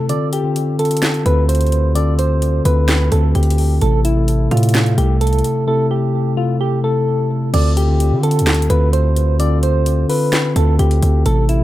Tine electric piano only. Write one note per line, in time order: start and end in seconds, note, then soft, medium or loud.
0.00 0.11 C3 loud
0.00 0.12 A3 medium
0.00 0.11 E4 medium
0.00 0.10 A4 loud
0.09 0.32 D3 medium
0.09 0.33 C4 medium
0.09 0.33 F4 medium
0.09 0.33 A4 loud
0.44 0.67 D3 medium
0.44 0.67 C4 medium
0.44 0.68 F4 medium
0.44 0.68 G4 medium
0.79 1.10 D3 medium
0.79 1.10 C4 medium
0.79 1.10 F4 medium
0.79 1.10 A4 medium
1.25 1.72 D3 medium
1.25 1.72 C4 medium
1.25 1.72 F4 medium
1.25 1.73 A4 medium
1.95 2.42 D3 loud
1.95 2.42 C4 medium
1.95 2.42 F4 medium
1.95 2.42 A4 loud
2.64 2.96 D3 medium
2.64 2.96 C4 medium
2.64 2.96 F4 medium
2.64 2.96 A4 medium
3.11 3.58 D3 medium
3.11 3.58 C4 medium
3.11 3.58 F4 medium
3.11 3.58 A4 medium
3.81 4.04 C3 medium
3.81 4.05 A3 medium
3.81 4.05 E4 medium
3.81 4.05 A4 loud
4.16 4.39 C3 medium
4.16 4.39 A3 medium
4.16 4.40 E4 medium
4.16 4.40 A4 medium
4.51 4.82 C3 medium
4.51 4.82 A3 medium
4.51 4.83 A4 medium
4.51 4.82 E5 medium
4.97 5.44 C3 medium
4.97 5.44 A3 medium
4.97 5.44 E4 medium
4.97 5.44 A4 medium
5.67 6.14 C3 loud
5.67 6.14 A3 medium
5.67 6.14 E4 medium
5.67 6.14 A4 loud
6.37 6.68 C3 medium
6.37 6.68 A3 medium
6.37 6.68 E4 medium
6.37 6.69 A4 medium
6.83 7.30 C3 medium
6.83 7.30 A3 medium
6.83 7.30 E4 medium
6.83 7.31 A4 medium
7.53 7.77 D3 medium
7.53 7.77 C4 medium
7.53 7.77 F4 medium
7.53 7.77 A4 loud
7.88 8.11 D3 medium
7.88 8.11 C4 medium
7.88 8.12 F4 medium
7.88 8.12 G4 medium
8.23 8.54 D3 medium
8.23 8.54 C4 medium
8.23 8.54 F4 medium
8.23 8.55 A4 medium
8.69 9.16 D3 medium
8.69 9.16 C4 medium
8.69 9.16 F4 medium
8.69 9.17 A4 medium
9.39 9.86 D3 loud
9.39 9.86 C4 medium
9.39 9.86 F4 medium
9.39 9.86 A4 loud
10.09 10.40 D3 medium
10.09 10.40 C4 medium
10.09 10.40 F4 medium
10.09 10.41 A4 medium
10.55 11.02 D3 medium
10.55 11.02 C4 medium
10.55 11.02 F4 medium
10.55 11.03 A4 medium
11.25 11.49 C3 loud
11.25 11.49 A3 medium
11.25 11.49 E4 medium
11.25 11.49 A4 loud
11.60 11.64 C3 medium
11.60 11.64 A3 medium
11.60 11.64 E4 medium